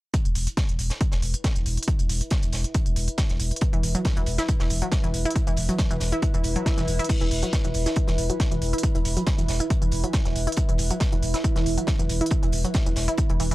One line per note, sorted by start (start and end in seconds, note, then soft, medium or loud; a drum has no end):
0.14 13.55 E4 medium
0.14 kick loud
0.14 closed hi-hat medium
0.25 0.35 E1 medium
0.25 closed hi-hat medium
0.35 0.47 E1 loud
0.35 closed hi-hat medium
0.35 open hi-hat loud
0.47 closed hi-hat medium
0.47 closed hi-hat soft
0.55 13.55 B4 medium
0.55 kick loud
0.55 snare loud
0.55 closed hi-hat medium
0.69 0.78 E1 medium
0.69 closed hi-hat medium
0.79 0.90 E1 loud
0.79 closed hi-hat medium
0.79 open hi-hat medium
0.90 snare soft
0.90 closed hi-hat medium
1.01 kick loud
1.01 closed hi-hat medium
1.07 13.55 E5 medium
1.12 1.22 E1 medium
1.12 snare medium
1.12 closed hi-hat medium
1.22 1.34 E1 loud
1.22 closed hi-hat medium
1.22 open hi-hat loud
1.34 closed hi-hat medium
1.44 kick loud
1.44 snare loud
1.44 closed hi-hat medium
1.56 1.65 E1 medium
1.56 closed hi-hat medium
1.66 1.77 E1 medium
1.66 closed hi-hat medium
1.66 open hi-hat medium
1.77 closed hi-hat soft
1.83 closed hi-hat medium
1.88 kick loud
1.88 closed hi-hat medium
1.99 2.09 E1 medium
1.99 closed hi-hat medium
1.99 closed hi-hat soft
2.09 2.21 E1 loud
2.09 closed hi-hat medium
2.09 open hi-hat loud
2.21 closed hi-hat medium
2.21 closed hi-hat soft
2.31 kick loud
2.31 snare loud
2.31 closed hi-hat medium
2.43 2.52 E1 medium
2.43 closed hi-hat medium
2.43 closed hi-hat soft
2.52 2.64 E1 loud
2.52 snare soft
2.52 closed hi-hat medium
2.52 open hi-hat medium
2.64 closed hi-hat medium
2.74 kick loud
2.74 closed hi-hat medium
2.86 2.96 E1 medium
2.86 closed hi-hat medium
2.96 3.08 E1 loud
2.96 closed hi-hat medium
2.96 open hi-hat loud
3.08 closed hi-hat medium
3.18 kick loud
3.18 snare loud
3.18 closed hi-hat medium
3.30 3.39 E1 medium
3.30 snare soft
3.30 closed hi-hat medium
3.40 3.51 E1 loud
3.40 closed hi-hat medium
3.40 open hi-hat medium
3.51 closed hi-hat soft
3.56 closed hi-hat medium
3.61 kick loud
3.61 closed hi-hat medium
3.73 3.83 E1 medium
3.73 3.79 E3 medium
3.73 closed hi-hat medium
3.83 3.95 E1 loud
3.83 closed hi-hat medium
3.83 open hi-hat loud
3.95 4.00 F#3 medium
3.95 closed hi-hat medium
3.95 closed hi-hat soft
4.05 kick loud
4.05 snare loud
4.05 closed hi-hat medium
4.17 4.26 E1 medium
4.17 4.20 E3 medium
4.17 closed hi-hat soft
4.26 4.38 E1 loud
4.26 closed hi-hat medium
4.26 open hi-hat medium
4.38 4.41 E4 medium
4.38 snare soft
4.38 closed hi-hat medium
4.48 kick loud
4.48 closed hi-hat medium
4.60 4.70 E1 medium
4.60 4.66 E3 medium
4.60 snare medium
4.60 closed hi-hat medium
4.70 4.82 E1 loud
4.70 closed hi-hat medium
4.70 open hi-hat loud
4.82 4.87 F#3 medium
4.82 closed hi-hat medium
4.92 kick loud
4.92 snare loud
4.92 closed hi-hat medium
5.04 5.13 E1 medium
5.04 5.07 E3 medium
5.04 closed hi-hat medium
5.14 5.25 E1 loud
5.14 closed hi-hat medium
5.14 open hi-hat medium
5.25 5.28 E4 medium
5.25 closed hi-hat soft
5.30 closed hi-hat medium
5.36 kick loud
5.36 closed hi-hat medium
5.47 5.57 E1 medium
5.47 5.53 E3 medium
5.47 closed hi-hat medium
5.47 closed hi-hat soft
5.57 5.69 E1 loud
5.57 closed hi-hat medium
5.57 open hi-hat loud
5.69 5.74 F#3 medium
5.69 closed hi-hat soft
5.78 kick loud
5.78 snare loud
5.78 closed hi-hat medium
5.90 6.00 E1 medium
5.90 5.94 E3 medium
5.90 closed hi-hat soft
6.00 6.12 E1 loud
6.00 snare medium
6.00 closed hi-hat medium
6.00 open hi-hat medium
6.12 6.15 E4 medium
6.12 closed hi-hat medium
6.22 kick loud
6.22 closed hi-hat medium
6.22 swell medium
6.34 6.44 E1 medium
6.34 6.40 E3 medium
6.34 closed hi-hat soft
6.44 6.56 E1 medium
6.44 closed hi-hat medium
6.44 open hi-hat loud
6.56 6.61 F#3 medium
6.56 closed hi-hat soft
6.66 kick loud
6.66 snare loud
6.66 closed hi-hat medium
6.78 6.87 E1 medium
6.78 6.81 E3 medium
6.78 snare soft
6.78 closed hi-hat medium
6.88 6.99 E1 loud
6.88 closed hi-hat medium
6.88 open hi-hat medium
6.99 7.01 E4 medium
6.99 closed hi-hat soft
7.04 closed hi-hat medium
7.09 13.55 E3 medium
7.09 13.55 E4 medium
7.09 kick loud
7.09 closed hi-hat medium
7.09 crash medium
7.21 7.31 E1 medium
7.21 7.27 E3 medium
7.21 closed hi-hat medium
7.31 7.43 E1 loud
7.31 closed hi-hat medium
7.31 open hi-hat loud
7.43 7.48 F#3 medium
7.43 closed hi-hat medium
7.43 closed hi-hat soft
7.53 kick loud
7.53 snare loud
7.53 closed hi-hat medium
7.64 7.74 E1 medium
7.64 7.68 E3 medium
7.64 closed hi-hat medium
7.74 7.86 E1 loud
7.74 closed hi-hat medium
7.74 open hi-hat medium
7.86 7.88 E4 medium
7.86 snare medium
7.86 closed hi-hat medium
7.96 kick loud
7.96 closed hi-hat medium
8.08 8.18 E1 medium
8.08 8.14 E3 medium
8.08 snare medium
8.08 closed hi-hat medium
8.18 8.30 E1 loud
8.18 closed hi-hat medium
8.18 open hi-hat loud
8.30 8.35 F#3 medium
8.30 closed hi-hat medium
8.40 kick loud
8.40 snare loud
8.40 closed hi-hat medium
8.51 8.61 E1 medium
8.51 8.55 E3 medium
8.51 closed hi-hat medium
8.62 8.73 E1 medium
8.62 closed hi-hat medium
8.62 open hi-hat medium
8.73 8.75 E4 medium
8.73 closed hi-hat medium
8.78 closed hi-hat medium
8.83 kick loud
8.83 closed hi-hat medium
8.95 9.05 E1 medium
8.95 9.01 E3 medium
8.95 closed hi-hat medium
8.95 closed hi-hat soft
9.05 9.16 E1 loud
9.05 closed hi-hat medium
9.05 open hi-hat loud
9.17 9.22 F#3 medium
9.17 closed hi-hat medium
9.17 closed hi-hat soft
9.27 kick loud
9.27 snare loud
9.27 closed hi-hat medium
9.38 9.48 E1 medium
9.38 9.42 E3 medium
9.38 closed hi-hat medium
9.38 closed hi-hat soft
9.48 9.60 E1 loud
9.48 snare medium
9.48 closed hi-hat medium
9.48 open hi-hat loud
9.60 9.62 E4 medium
9.60 closed hi-hat medium
9.70 kick loud
9.70 closed hi-hat medium
9.82 9.92 E1 medium
9.82 9.87 E3 medium
9.82 closed hi-hat medium
9.91 10.03 E1 loud
9.91 closed hi-hat medium
9.91 open hi-hat loud
10.04 10.09 F#3 medium
10.04 closed hi-hat medium
10.13 kick loud
10.13 snare loud
10.13 closed hi-hat medium
10.25 10.35 E1 medium
10.25 10.29 E3 medium
10.25 snare soft
10.25 closed hi-hat medium
10.35 10.47 E1 loud
10.35 closed hi-hat medium
10.35 open hi-hat medium
10.47 10.49 E4 medium
10.47 closed hi-hat soft
10.52 closed hi-hat medium
10.57 kick loud
10.57 closed hi-hat medium
10.69 10.78 E1 medium
10.69 10.74 E3 medium
10.69 closed hi-hat medium
10.78 10.90 E1 loud
10.78 closed hi-hat medium
10.78 open hi-hat loud
10.90 10.96 F#3 medium
10.90 closed hi-hat soft
10.90 closed hi-hat medium
11.00 kick loud
11.00 snare loud
11.00 closed hi-hat medium
11.12 11.22 E1 medium
11.12 11.16 E3 medium
11.12 closed hi-hat medium
11.22 11.34 E1 loud
11.22 closed hi-hat medium
11.22 open hi-hat medium
11.34 11.36 E4 medium
11.34 snare soft
11.34 closed hi-hat medium
11.44 kick loud
11.44 closed hi-hat medium
11.56 11.65 E1 medium
11.56 11.61 E3 medium
11.56 snare medium
11.56 closed hi-hat medium
11.66 11.77 E1 loud
11.66 closed hi-hat medium
11.66 open hi-hat loud
11.78 11.83 F#3 medium
11.78 closed hi-hat medium
11.87 kick loud
11.87 snare loud
11.87 closed hi-hat medium
11.99 12.09 E1 medium
11.99 12.03 E3 medium
11.99 closed hi-hat medium
12.09 12.21 E1 loud
12.09 closed hi-hat medium
12.09 open hi-hat medium
12.21 12.23 E4 medium
12.21 closed hi-hat medium
12.26 closed hi-hat medium
12.31 kick loud
12.31 closed hi-hat medium
12.43 12.52 E1 medium
12.43 12.48 E3 medium
12.43 closed hi-hat medium
12.43 closed hi-hat soft
12.52 12.64 E1 loud
12.52 closed hi-hat medium
12.52 open hi-hat loud
12.64 12.70 F#3 medium
12.64 closed hi-hat soft
12.64 closed hi-hat medium
12.74 kick loud
12.74 snare loud
12.74 closed hi-hat medium
12.86 12.96 E1 medium
12.86 12.90 E3 medium
12.86 closed hi-hat soft
12.86 closed hi-hat medium
12.96 13.08 E1 loud
12.96 snare medium
12.96 closed hi-hat medium
12.96 open hi-hat medium
13.08 13.10 E4 medium
13.08 closed hi-hat medium
13.18 kick loud
13.18 closed hi-hat medium
13.30 13.39 E1 medium
13.30 13.35 E3 medium
13.30 closed hi-hat soft
13.40 13.51 E1 loud
13.40 13.44 E3 medium
13.40 closed hi-hat medium
13.40 open hi-hat loud
13.51 13.55 E3 medium
13.51 closed hi-hat soft